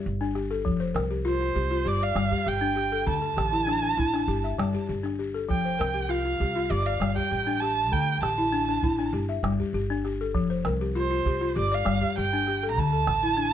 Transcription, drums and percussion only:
0, 0, Header, 1, 2, 480
1, 0, Start_track
1, 0, Tempo, 605449
1, 518, Time_signature, 4, 2, 24, 8
1, 10729, End_track
2, 0, Start_track
2, 0, Title_t, "Calabash"
2, 280, Note_on_c, 9, 38, 22
2, 360, Note_off_c, 9, 38, 0
2, 525, Note_on_c, 9, 36, 59
2, 605, Note_off_c, 9, 36, 0
2, 760, Note_on_c, 9, 38, 55
2, 840, Note_off_c, 9, 38, 0
2, 1236, Note_on_c, 9, 36, 58
2, 1315, Note_off_c, 9, 36, 0
2, 1714, Note_on_c, 9, 38, 55
2, 1793, Note_off_c, 9, 38, 0
2, 1838, Note_on_c, 9, 36, 47
2, 1917, Note_off_c, 9, 36, 0
2, 2197, Note_on_c, 9, 38, 20
2, 2276, Note_off_c, 9, 38, 0
2, 2435, Note_on_c, 9, 36, 60
2, 2435, Note_on_c, 9, 38, 19
2, 2515, Note_off_c, 9, 36, 0
2, 2515, Note_off_c, 9, 38, 0
2, 2680, Note_on_c, 9, 38, 60
2, 2759, Note_off_c, 9, 38, 0
2, 2807, Note_on_c, 9, 38, 20
2, 2887, Note_off_c, 9, 38, 0
2, 2923, Note_on_c, 9, 38, 20
2, 3002, Note_off_c, 9, 38, 0
2, 3166, Note_on_c, 9, 36, 60
2, 3245, Note_off_c, 9, 36, 0
2, 3294, Note_on_c, 9, 38, 19
2, 3374, Note_off_c, 9, 38, 0
2, 3531, Note_on_c, 9, 38, 20
2, 3610, Note_off_c, 9, 38, 0
2, 3643, Note_on_c, 9, 38, 62
2, 3722, Note_off_c, 9, 38, 0
2, 4009, Note_on_c, 9, 38, 19
2, 4088, Note_off_c, 9, 38, 0
2, 4364, Note_on_c, 9, 36, 68
2, 4443, Note_off_c, 9, 36, 0
2, 4606, Note_on_c, 9, 38, 63
2, 4686, Note_off_c, 9, 38, 0
2, 5085, Note_on_c, 9, 36, 60
2, 5165, Note_off_c, 9, 36, 0
2, 5563, Note_on_c, 9, 38, 59
2, 5642, Note_off_c, 9, 38, 0
2, 5691, Note_on_c, 9, 36, 46
2, 5771, Note_off_c, 9, 36, 0
2, 6053, Note_on_c, 9, 38, 22
2, 6132, Note_off_c, 9, 38, 0
2, 6286, Note_on_c, 9, 36, 57
2, 6365, Note_off_c, 9, 36, 0
2, 6525, Note_on_c, 9, 38, 57
2, 6605, Note_off_c, 9, 38, 0
2, 7006, Note_on_c, 9, 36, 64
2, 7086, Note_off_c, 9, 36, 0
2, 7484, Note_on_c, 9, 38, 60
2, 7563, Note_off_c, 9, 38, 0
2, 7610, Note_on_c, 9, 36, 46
2, 7689, Note_off_c, 9, 36, 0
2, 7964, Note_on_c, 9, 38, 21
2, 8044, Note_off_c, 9, 38, 0
2, 8202, Note_on_c, 9, 36, 58
2, 8281, Note_off_c, 9, 36, 0
2, 8442, Note_on_c, 9, 38, 58
2, 8521, Note_off_c, 9, 38, 0
2, 8924, Note_on_c, 9, 36, 60
2, 9004, Note_off_c, 9, 36, 0
2, 9403, Note_on_c, 9, 38, 57
2, 9482, Note_off_c, 9, 38, 0
2, 9527, Note_on_c, 9, 36, 44
2, 9606, Note_off_c, 9, 36, 0
2, 9886, Note_on_c, 9, 38, 20
2, 9965, Note_off_c, 9, 38, 0
2, 10131, Note_on_c, 9, 36, 58
2, 10210, Note_off_c, 9, 36, 0
2, 10365, Note_on_c, 9, 38, 60
2, 10444, Note_off_c, 9, 38, 0
2, 10729, End_track
0, 0, End_of_file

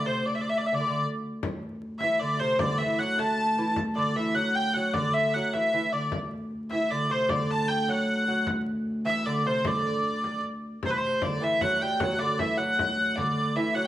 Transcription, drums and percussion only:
0, 0, Header, 1, 2, 480
1, 0, Start_track
1, 0, Tempo, 391901
1, 296, Time_signature, 6, 3, 24, 8
1, 16989, End_track
2, 0, Start_track
2, 0, Title_t, "Frame drum"
2, 1750, Note_on_c, 9, 64, 88
2, 1872, Note_off_c, 9, 64, 0
2, 1993, Note_on_c, 9, 64, 24
2, 2115, Note_off_c, 9, 64, 0
2, 2225, Note_on_c, 9, 64, 28
2, 2347, Note_off_c, 9, 64, 0
2, 2455, Note_on_c, 9, 64, 68
2, 2577, Note_off_c, 9, 64, 0
2, 2699, Note_on_c, 9, 64, 25
2, 2822, Note_off_c, 9, 64, 0
2, 2942, Note_on_c, 9, 64, 29
2, 3064, Note_off_c, 9, 64, 0
2, 3174, Note_on_c, 9, 64, 101
2, 3297, Note_off_c, 9, 64, 0
2, 3407, Note_on_c, 9, 64, 30
2, 3530, Note_off_c, 9, 64, 0
2, 3658, Note_on_c, 9, 64, 28
2, 3781, Note_off_c, 9, 64, 0
2, 3892, Note_on_c, 9, 64, 63
2, 4015, Note_off_c, 9, 64, 0
2, 4133, Note_on_c, 9, 64, 22
2, 4255, Note_off_c, 9, 64, 0
2, 4370, Note_on_c, 9, 64, 24
2, 4493, Note_off_c, 9, 64, 0
2, 4609, Note_on_c, 9, 64, 75
2, 4732, Note_off_c, 9, 64, 0
2, 4847, Note_on_c, 9, 64, 22
2, 4969, Note_off_c, 9, 64, 0
2, 5095, Note_on_c, 9, 64, 22
2, 5218, Note_off_c, 9, 64, 0
2, 5334, Note_on_c, 9, 64, 55
2, 5457, Note_off_c, 9, 64, 0
2, 5574, Note_on_c, 9, 64, 20
2, 5697, Note_off_c, 9, 64, 0
2, 5808, Note_on_c, 9, 64, 23
2, 5930, Note_off_c, 9, 64, 0
2, 6050, Note_on_c, 9, 64, 76
2, 6172, Note_off_c, 9, 64, 0
2, 6781, Note_on_c, 9, 64, 56
2, 6904, Note_off_c, 9, 64, 0
2, 7024, Note_on_c, 9, 64, 22
2, 7146, Note_off_c, 9, 64, 0
2, 7493, Note_on_c, 9, 64, 81
2, 7616, Note_off_c, 9, 64, 0
2, 7734, Note_on_c, 9, 64, 28
2, 7857, Note_off_c, 9, 64, 0
2, 7971, Note_on_c, 9, 64, 24
2, 8094, Note_off_c, 9, 64, 0
2, 8213, Note_on_c, 9, 64, 58
2, 8336, Note_off_c, 9, 64, 0
2, 8457, Note_on_c, 9, 64, 24
2, 8580, Note_off_c, 9, 64, 0
2, 8697, Note_on_c, 9, 64, 23
2, 8819, Note_off_c, 9, 64, 0
2, 8929, Note_on_c, 9, 64, 75
2, 9052, Note_off_c, 9, 64, 0
2, 9163, Note_on_c, 9, 64, 26
2, 9286, Note_off_c, 9, 64, 0
2, 9398, Note_on_c, 9, 64, 22
2, 9521, Note_off_c, 9, 64, 0
2, 9655, Note_on_c, 9, 64, 52
2, 9777, Note_off_c, 9, 64, 0
2, 10131, Note_on_c, 9, 64, 23
2, 10254, Note_off_c, 9, 64, 0
2, 10370, Note_on_c, 9, 64, 72
2, 10493, Note_off_c, 9, 64, 0
2, 10614, Note_on_c, 9, 64, 24
2, 10737, Note_off_c, 9, 64, 0
2, 10866, Note_on_c, 9, 64, 24
2, 10988, Note_off_c, 9, 64, 0
2, 11099, Note_on_c, 9, 64, 55
2, 11221, Note_off_c, 9, 64, 0
2, 11340, Note_on_c, 9, 64, 22
2, 11463, Note_off_c, 9, 64, 0
2, 11582, Note_on_c, 9, 64, 26
2, 11704, Note_off_c, 9, 64, 0
2, 11815, Note_on_c, 9, 64, 88
2, 11937, Note_off_c, 9, 64, 0
2, 12301, Note_on_c, 9, 64, 24
2, 12424, Note_off_c, 9, 64, 0
2, 12543, Note_on_c, 9, 64, 60
2, 12665, Note_off_c, 9, 64, 0
2, 12785, Note_on_c, 9, 64, 24
2, 12907, Note_off_c, 9, 64, 0
2, 13260, Note_on_c, 9, 64, 80
2, 13383, Note_off_c, 9, 64, 0
2, 13497, Note_on_c, 9, 64, 27
2, 13620, Note_off_c, 9, 64, 0
2, 13738, Note_on_c, 9, 64, 77
2, 13861, Note_off_c, 9, 64, 0
2, 14220, Note_on_c, 9, 64, 79
2, 14343, Note_off_c, 9, 64, 0
2, 14466, Note_on_c, 9, 64, 29
2, 14589, Note_off_c, 9, 64, 0
2, 14697, Note_on_c, 9, 64, 96
2, 14819, Note_off_c, 9, 64, 0
2, 14938, Note_on_c, 9, 64, 28
2, 15060, Note_off_c, 9, 64, 0
2, 15174, Note_on_c, 9, 64, 78
2, 15297, Note_off_c, 9, 64, 0
2, 15665, Note_on_c, 9, 64, 80
2, 15788, Note_off_c, 9, 64, 0
2, 15905, Note_on_c, 9, 64, 23
2, 16027, Note_off_c, 9, 64, 0
2, 16138, Note_on_c, 9, 64, 71
2, 16261, Note_off_c, 9, 64, 0
2, 16989, End_track
0, 0, End_of_file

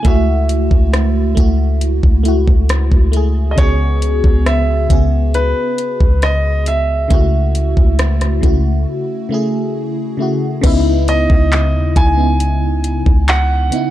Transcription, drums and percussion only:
0, 0, Header, 1, 2, 480
1, 0, Start_track
1, 0, Key_signature, 4, "minor"
1, 0, Tempo, 882353
1, 27, Time_signature, 4, 2, 24, 8
1, 7564, End_track
2, 0, Start_track
2, 0, Title_t, "Drums"
2, 26, Note_on_c, 9, 42, 69
2, 27, Note_on_c, 9, 36, 109
2, 80, Note_off_c, 9, 42, 0
2, 81, Note_off_c, 9, 36, 0
2, 268, Note_on_c, 9, 42, 66
2, 322, Note_off_c, 9, 42, 0
2, 387, Note_on_c, 9, 36, 91
2, 441, Note_off_c, 9, 36, 0
2, 509, Note_on_c, 9, 37, 111
2, 509, Note_on_c, 9, 42, 66
2, 563, Note_off_c, 9, 37, 0
2, 563, Note_off_c, 9, 42, 0
2, 746, Note_on_c, 9, 36, 85
2, 746, Note_on_c, 9, 42, 65
2, 801, Note_off_c, 9, 36, 0
2, 801, Note_off_c, 9, 42, 0
2, 986, Note_on_c, 9, 42, 74
2, 1041, Note_off_c, 9, 42, 0
2, 1106, Note_on_c, 9, 36, 88
2, 1161, Note_off_c, 9, 36, 0
2, 1225, Note_on_c, 9, 42, 55
2, 1279, Note_off_c, 9, 42, 0
2, 1347, Note_on_c, 9, 36, 87
2, 1401, Note_off_c, 9, 36, 0
2, 1465, Note_on_c, 9, 42, 68
2, 1469, Note_on_c, 9, 37, 115
2, 1520, Note_off_c, 9, 42, 0
2, 1523, Note_off_c, 9, 37, 0
2, 1586, Note_on_c, 9, 36, 89
2, 1641, Note_off_c, 9, 36, 0
2, 1704, Note_on_c, 9, 42, 71
2, 1759, Note_off_c, 9, 42, 0
2, 1946, Note_on_c, 9, 36, 113
2, 1946, Note_on_c, 9, 42, 70
2, 2000, Note_off_c, 9, 42, 0
2, 2001, Note_off_c, 9, 36, 0
2, 2187, Note_on_c, 9, 42, 66
2, 2242, Note_off_c, 9, 42, 0
2, 2306, Note_on_c, 9, 36, 94
2, 2361, Note_off_c, 9, 36, 0
2, 2428, Note_on_c, 9, 37, 116
2, 2429, Note_on_c, 9, 42, 67
2, 2483, Note_off_c, 9, 37, 0
2, 2483, Note_off_c, 9, 42, 0
2, 2666, Note_on_c, 9, 36, 86
2, 2666, Note_on_c, 9, 42, 68
2, 2721, Note_off_c, 9, 36, 0
2, 2721, Note_off_c, 9, 42, 0
2, 2907, Note_on_c, 9, 42, 74
2, 2961, Note_off_c, 9, 42, 0
2, 3146, Note_on_c, 9, 42, 57
2, 3200, Note_off_c, 9, 42, 0
2, 3267, Note_on_c, 9, 36, 88
2, 3321, Note_off_c, 9, 36, 0
2, 3385, Note_on_c, 9, 42, 70
2, 3388, Note_on_c, 9, 37, 112
2, 3439, Note_off_c, 9, 42, 0
2, 3443, Note_off_c, 9, 37, 0
2, 3625, Note_on_c, 9, 42, 72
2, 3679, Note_off_c, 9, 42, 0
2, 3865, Note_on_c, 9, 42, 68
2, 3866, Note_on_c, 9, 36, 113
2, 3919, Note_off_c, 9, 42, 0
2, 3921, Note_off_c, 9, 36, 0
2, 4107, Note_on_c, 9, 42, 65
2, 4161, Note_off_c, 9, 42, 0
2, 4227, Note_on_c, 9, 36, 93
2, 4281, Note_off_c, 9, 36, 0
2, 4345, Note_on_c, 9, 42, 57
2, 4348, Note_on_c, 9, 37, 114
2, 4400, Note_off_c, 9, 42, 0
2, 4403, Note_off_c, 9, 37, 0
2, 4467, Note_on_c, 9, 42, 56
2, 4469, Note_on_c, 9, 37, 66
2, 4521, Note_off_c, 9, 42, 0
2, 4524, Note_off_c, 9, 37, 0
2, 4587, Note_on_c, 9, 36, 85
2, 4587, Note_on_c, 9, 42, 68
2, 4641, Note_off_c, 9, 36, 0
2, 4641, Note_off_c, 9, 42, 0
2, 5786, Note_on_c, 9, 42, 70
2, 5786, Note_on_c, 9, 49, 98
2, 5787, Note_on_c, 9, 36, 111
2, 5840, Note_off_c, 9, 42, 0
2, 5841, Note_off_c, 9, 36, 0
2, 5841, Note_off_c, 9, 49, 0
2, 6028, Note_on_c, 9, 42, 73
2, 6082, Note_off_c, 9, 42, 0
2, 6146, Note_on_c, 9, 36, 97
2, 6201, Note_off_c, 9, 36, 0
2, 6270, Note_on_c, 9, 39, 109
2, 6270, Note_on_c, 9, 42, 68
2, 6324, Note_off_c, 9, 39, 0
2, 6324, Note_off_c, 9, 42, 0
2, 6507, Note_on_c, 9, 36, 96
2, 6507, Note_on_c, 9, 42, 66
2, 6561, Note_off_c, 9, 36, 0
2, 6561, Note_off_c, 9, 42, 0
2, 6747, Note_on_c, 9, 42, 72
2, 6801, Note_off_c, 9, 42, 0
2, 6985, Note_on_c, 9, 42, 56
2, 7040, Note_off_c, 9, 42, 0
2, 7106, Note_on_c, 9, 36, 95
2, 7161, Note_off_c, 9, 36, 0
2, 7224, Note_on_c, 9, 42, 73
2, 7228, Note_on_c, 9, 39, 115
2, 7279, Note_off_c, 9, 42, 0
2, 7282, Note_off_c, 9, 39, 0
2, 7464, Note_on_c, 9, 42, 70
2, 7519, Note_off_c, 9, 42, 0
2, 7564, End_track
0, 0, End_of_file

